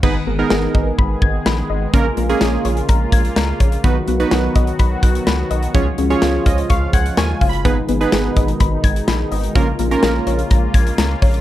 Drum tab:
CC |x---------------|----------------|----------------|----------------|
HH |----------------|x-xxx-xxx-xxx-xx|x-xxx-xxx-xxx-xx|x-xxx-xxx-xxx-ox|
SD |----o-------o---|----o-------o---|----o-------o---|----o-------o---|
BD |o-----o-o-o-----|o-------o-o---o-|o-----o-o-o-----|o-----o-o-o---o-|

CC |----------------|----------------|
HH |x-xxx-xxx-xxx-ox|x-xxx-xxx-xxx-ox|
SD |----o-------o---|----o-------o---|
BD |o-----o-o-o-----|o-------o-o---o-|